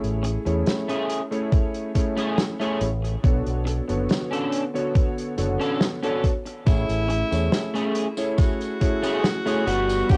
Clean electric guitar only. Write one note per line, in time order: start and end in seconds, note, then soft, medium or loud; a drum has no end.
0.23 muted clean electric guitar stroke loud
0.45 muted clean electric guitar stroke soft
0.88 1.20 A3 medium
0.88 1.21 C#4 medium
0.88 1.21 G#4 medium
1.52 muted clean electric guitar stroke soft
2.17 2.38 A3 loud
2.17 2.38 C#4 medium
2.17 2.39 G#4 loud
2.59 2.80 A3 medium
2.59 2.81 C#4 medium
2.59 2.81 G#4 medium
3.02 muted clean electric guitar stroke soft
3.65 muted clean electric guitar stroke loud
3.88 muted clean electric guitar stroke soft
4.31 4.63 C#4 medium
4.31 4.64 D4 medium
4.31 4.64 A4 medium
4.94 muted clean electric guitar stroke soft
5.60 5.81 C#4 loud
5.60 5.81 D4 loud
5.60 5.81 A4 loud
6.03 6.23 C#4 medium
6.03 6.24 D4 medium
6.03 6.24 A4 medium
6.45 muted clean electric guitar stroke soft
7.08 muted clean electric guitar stroke loud
7.31 muted clean electric guitar stroke soft
7.74 8.06 A3 medium
7.74 8.07 C#4 medium
7.74 8.07 G#4 medium
8.37 muted clean electric guitar stroke soft
9.02 9.23 A3 loud
9.02 9.24 C#4 medium
9.02 9.24 G#4 loud
9.46 9.66 A3 medium
9.46 9.67 C#4 medium
9.46 9.67 G#4 medium
9.66 10.17 G3 medium
9.66 10.17 B3 medium
9.66 10.17 F#4 loud